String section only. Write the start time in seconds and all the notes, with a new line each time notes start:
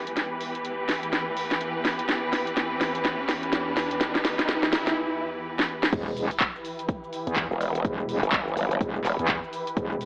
Already playing: E2 E3 G4 B4
5.93 E3 E4 G4 B4